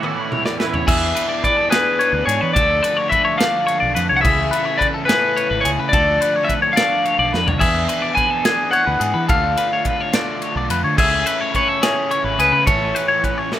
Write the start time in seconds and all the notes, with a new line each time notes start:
Already playing: A2 E3 C#4 E4 F#4
0.02 A2 E3 A3 C#4 E4 D5, high tom
0.31 E2 C#5, mid tom
0.46 D5, snare
0.59 E4 B4, snare
0.74 C#5, floor tom
0.87 E2 E3 B3 D4 G#4 E5, kick, crash
1.15 B4, ride
1.29 D5
1.43 B4 D5, kick, ride
1.57 A4
1.70 B3 D4 G#4 B4, snare, ride
1.75 E3
1.99 C#5, ride
2.13 D2 B4
2.26 G#2 G#4 C#5, ride
2.41 E3 B4
2.53 D2 D3 A4 D5, kick, ride
2.57 F3 A3 D4 A4
2.83 B4, ride
2.97 C#5
3.09 B4 E5, kick, ride
3.25 C#5
3.38 A3 D4 A4 D5 F5, snare, ride
3.42 D3 F3
3.67 C#5, ride
3.80 B1 D5
3.95 F2 B4, ride
4.09 C2 C#5
4.16 F#5
4.21 C#2 C#3 E3 G#4 E5, kick, crash
4.26 A3 E4 A4
4.51 B4, ride
4.65 C#5
4.78 B4 D5, kick
4.82 ride
4.94 A4
5.05 E4 G#4 A4 B4, ride
5.09 C#3 E3 A3, snare
5.37 C#5, ride
5.51 G#1 B4
5.61 C#5
5.65 C#2 G#4, ride
5.79 C#3 B4
5.89 D2 D3 D5
5.93 F3 A3 D4 A4, kick, ride
6.21 B4, ride
6.36 C#5
6.45 B4 E5
6.49 kick, ride
6.62 C#5
6.73 A4 D5 F5
6.77 D3 F3 A3 D4, snare, ride
7.05 C#5, ride
7.19 B1 D5
7.33 F2 B4, snare
7.47 B1 C#5, floor tom
7.59 E2 E3 B3 D4 G#4 E5, kick, crash
7.88 B4, ride
8.02 D5
8.15 B4 G#5, kick, ride
8.30 A4
8.44 E3 B3 D4 G#4, snare, ride
8.71 C#5 F#5, ride
8.87 D2 B4
9.00 G#2 G#4, ride
9.14 E3 B4
9.28 D2 D3 A3 D4 F4 A4 F5, kick, ride
9.57 B4, ride
9.73 C#5
9.85 B4, kick, ride
10.01 C#5
10.12 D3 A3 D4 F4 D5, snare, ride
10.42 C#5, ride
10.56 B1 D5
10.70 F2 B4, ride
10.84 D3 C#5
10.97 C#2 C#3 A3 C#4 E4 G#4 E5, kick, crash
11.26 B4, ride
11.41 C#5
11.55 B4 C#5, kick, ride
11.68 A4
11.81 C#3 A3 C#4 E4 G#4, snare, ride
12.11 C#5, ride
12.24 G#1 B4
12.38 C#2 G#4 B4, ride
12.52 C#3 B4
12.67 A1 A2 E3 A3 C#4 E4 A4 C#5, kick, ride
12.95 B4, ride
13.08 C#5
13.24 B4, kick, ride
13.38 C#5
13.52 A2 E3 A3 C#4 E4 D5, snare